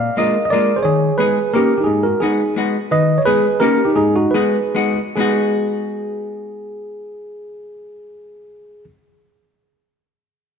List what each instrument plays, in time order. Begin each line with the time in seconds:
Already playing: tine electric piano D5 F5
0.17 hollow-body jazz guitar G#3 A#3 D4 F4, tine electric piano A#4 D#5
0.45 tine electric piano D#5
0.50 hollow-body jazz guitar G#3 A#3 D4 F4, tine electric piano A#4 D5
0.76 tine electric piano G#4 C5
0.83 hollow-body jazz guitar D#3, tine electric piano G#4 C#5
1.18 hollow-body jazz guitar G#3 B3 D#4 G#4, tine electric piano G#4 B4
1.54 hollow-body jazz guitar A#3 C#4 D#4 G4, tine electric piano G4 A#4
1.78 tine electric piano D#4 G4
1.84 hollow-body jazz guitar G#2, tine electric piano D#4 G#4
2.03 tine electric piano F#4 A#4
2.20 hollow-body jazz guitar G#3 B3 D#4 F#4, tine electric piano D#4 G#4
2.56 hollow-body jazz guitar G#3 B3 D#4 F#4
2.91 hollow-body jazz guitar D#3, tine electric piano B4 D#5
3.18 tine electric piano C#5
3.25 hollow-body jazz guitar G#3 B3 D#4 G#4, tine electric piano G#4 B4
3.60 hollow-body jazz guitar A#3 C#4 D#4 G4, tine electric piano G4 A#4
3.85 tine electric piano D#4 G4
3.96 hollow-body jazz guitar G#2, tine electric piano D#4 G#4
4.15 tine electric piano D#4 F#4
4.31 hollow-body jazz guitar G#3 B3 D#4, tine electric piano G#4 B4
4.35 hollow-body jazz guitar F#4
4.75 hollow-body jazz guitar G#3 B3 D#4 F#4
5.16 hollow-body jazz guitar G#3 B3 D#4, tine electric piano G#4
5.20 hollow-body jazz guitar F#4